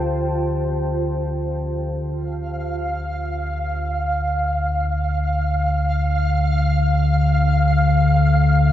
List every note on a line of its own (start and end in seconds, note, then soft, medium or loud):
0.00 2.02 D2 medium
0.00 2.02 D3 medium
0.00 2.02 F4 medium
0.00 2.02 C5 medium
0.00 2.02 G5 medium
0.00 2.02 A5 medium
2.03 8.72 D2 medium
2.03 8.72 D3 medium
2.03 8.72 F5 medium